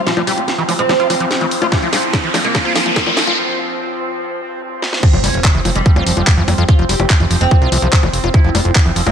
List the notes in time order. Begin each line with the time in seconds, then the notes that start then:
Already playing: F3 C4 F4 C5 F5, riser
0.06 F3 F4, snare, closed hi-hat
0.17 F3, closed hi-hat, high bongo
0.27 G3 G4, open hi-hat
0.38 closed hi-hat, high bongo
0.48 snare, closed hi-hat
0.58 E3, closed hi-hat
0.69 F3, open hi-hat, high bongo
0.79 G#3 C4, closed hi-hat
0.89 F3, snare, closed hi-hat, high bongo
1.00 F4, closed hi-hat
1.10 F3, open hi-hat, high bongo
1.20 F3, closed hi-hat
1.31 snare, closed hi-hat
1.41 E3, closed hi-hat, high bongo
1.51 open hi-hat
1.62 F4, closed hi-hat, high bongo
1.72 F3 E4, kick, snare, closed hi-hat
1.82 F3, closed hi-hat, high bongo
1.93 G3 F4, snare, open hi-hat
2.03 closed hi-hat
2.13 kick, snare, closed hi-hat, high bongo
2.24 E3, closed hi-hat
2.34 F3, snare, open hi-hat, high bongo
2.44 G#3 A#3, closed hi-hat
2.55 F3, kick, snare, closed hi-hat, high bongo
2.65 F4, closed hi-hat
2.75 F3, snare, open hi-hat
2.86 F3, closed hi-hat, high bongo
2.96 kick, snare, closed hi-hat
3.07 E3, closed hi-hat, high bongo
3.17 snare, open hi-hat
3.27 F4, closed hi-hat, high bongo
4.82 snare
4.93 snare
5.03 F3 C4, kick, closed hi-hat, crash, impact
5.13 F1 F3, closed hi-hat, high bongo
5.24 F1 G3 C#4, open hi-hat
5.34 F1, closed hi-hat
5.44 kick, clap, closed hi-hat, high bongo
5.55 F1 E3, closed hi-hat
5.65 F1 F3, open hi-hat, high bongo
5.75 F1 G3 G#3, closed hi-hat
5.86 F3, kick, closed hi-hat
5.96 F1 F4, closed hi-hat, high bongo
6.07 F1 F3, open hi-hat
6.17 F1 F3, closed hi-hat, high bongo
6.27 kick, clap, closed hi-hat
6.38 F2 E3, closed hi-hat
6.48 F2, open hi-hat, high bongo
6.58 F2 F4, closed hi-hat
6.69 F3 F4, kick, closed hi-hat, high bongo
6.79 F1 F3, closed hi-hat
6.89 F1 G3 G4, open hi-hat
7.00 F1, closed hi-hat, high bongo
7.10 kick, clap, closed hi-hat
7.20 F1 E3, closed hi-hat, high bongo
7.31 F1 F3, open hi-hat
7.41 F1 G#3 C4, closed hi-hat
7.51 F3, kick, closed hi-hat, high bongo
7.62 C2 F4, closed hi-hat
7.72 C2 F3, open hi-hat, high bongo
7.82 C2 F3, closed hi-hat
7.93 kick, clap, closed hi-hat
8.03 F1 E3, closed hi-hat, high bongo
8.13 F1, open hi-hat
8.24 F1 F4, closed hi-hat, high bongo
8.34 F3 E4, kick, closed hi-hat
8.44 F1 F3, closed hi-hat
8.55 F1 G3 F4, open hi-hat, high bongo
8.65 F1, closed hi-hat
8.75 kick, clap, closed hi-hat, high bongo
8.86 F1 E3, closed hi-hat
8.96 F1 F3, open hi-hat
9.07 F1 G#3 A#3, closed hi-hat, high bongo